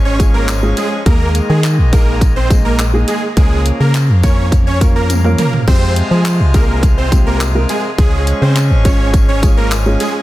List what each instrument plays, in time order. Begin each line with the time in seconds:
Already playing: fm bass G#1, accordion F3 G#3 C#4
0.05 supersaw synth C#4 C#5
0.19 grand piano G#3 C#4 F4 G#4, kick, closed hi-hat, tambourine
0.34 supersaw synth A#3 A#4
0.48 clap, closed hi-hat, tambourine
0.63 grand piano G#3 C#4 F4 G#4
0.77 supersaw synth G#3 G#4, closed hi-hat, tambourine
1.06 fm bass D#2, accordion D#3 A#3, grand piano G#3 A#3 D#4 G#4, supersaw synth A#3 A#4, kick, closed hi-hat
1.35 closed hi-hat, tambourine
1.50 fm bass D#3, supersaw synth G#3 G#4
1.64 clap, closed hi-hat, tambourine
1.78 fm bass A#1
1.92 grand piano G#3 A#3 D#4 G#4, supersaw synth A#3 A#4, kick, closed hi-hat, tambourine
2.21 kick, closed hi-hat, tambourine
2.36 supersaw synth C4 C5
2.50 grand piano G#3 A#3 D#4 G#4, kick, closed hi-hat, tambourine
2.65 supersaw synth A#3 A#4
2.79 clap, closed hi-hat, tambourine
2.93 grand piano G#3 A#3 D#4 G#4
3.08 supersaw synth G#3 G#4, closed hi-hat, tambourine
3.37 fm bass C#2, accordion C#3 F3, supersaw synth G#3 G#4, grand piano A#3 C#4 F4 A#4, kick, closed hi-hat, tambourine
3.66 closed hi-hat
3.80 fm bass C#3, supersaw synth A#3 A#4
3.94 clap, closed hi-hat, tambourine
4.09 fm bass F2
4.23 grand piano A#3 C#4 F4 A#4, supersaw synth C#4 C#5, kick, closed hi-hat, tambourine
4.52 kick, closed hi-hat, tambourine
4.67 supersaw synth C#4 C#5
4.81 grand piano A#3 C#4 F4 A#4, kick, closed hi-hat, tambourine
4.96 supersaw synth A#3 A#4
5.10 closed hi-hat, high tom, tambourine
5.24 grand piano A#3 C#4 F4 A#4, mid tom
5.38 supersaw synth A#3 A#4, closed hi-hat, mid tom, tambourine
5.53 floor tom
5.68 fm bass F2, accordion C3 F3 G#3 F4, grand piano G#3 C4 F4 G4, supersaw synth C4 C5, kick, crash
5.96 closed hi-hat
6.11 fm bass F3, supersaw synth G#3 G#4
6.25 clap, closed hi-hat, tambourine
6.40 fm bass C2
6.54 grand piano G#3 C4 F4 G#4, supersaw synth A#3 A#4, kick, closed hi-hat, tambourine
6.83 kick, closed hi-hat, tambourine
6.98 supersaw synth C4 C5
7.12 grand piano G#3 C4 F4 G4, kick, closed hi-hat, tambourine
7.27 supersaw synth A#3 A#4
7.41 clap, closed hi-hat, tambourine
7.55 grand piano G#3 C4 F4 A#4
7.69 supersaw synth G#3 G#4, closed hi-hat, tambourine
7.98 fm bass C#2, grand piano G#3 C#4 F4 G#4, supersaw synth G#3 G#4, accordion C#4, kick, closed hi-hat, tambourine
8.27 closed hi-hat, tambourine
8.42 fm bass C#3, supersaw synth C4 C5
8.56 clap, closed hi-hat, tambourine
8.71 fm bass G#1
8.85 grand piano G#3 C#4 F4 G#4, supersaw synth C#4 C#5, kick, closed hi-hat, tambourine
9.13 kick, closed hi-hat, tambourine
9.28 supersaw synth C#4 C#5
9.43 grand piano G#3 C#4 F4 G#4, kick, closed hi-hat, tambourine
9.57 supersaw synth A#3 A#4
9.72 clap, closed hi-hat, tambourine
9.86 grand piano G#3 C#4 F4 G#4
10.00 supersaw synth G#3 G#4, closed hi-hat, tambourine